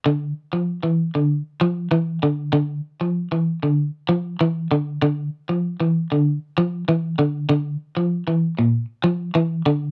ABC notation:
X:1
M:4/4
L:1/16
Q:1/4=97
K:Bblyd
V:1 name="Clean electric guitar" clef=bass
D,2 z F,2 E,2 D,2 z F,2 E,2 D,2 | D,2 z F,2 E,2 D,2 z F,2 E,2 D,2 | D,2 z F,2 E,2 D,2 z F,2 E,2 D,2 | D,2 z F,2 E,2 B,,2 z F,2 E,2 D,2 |]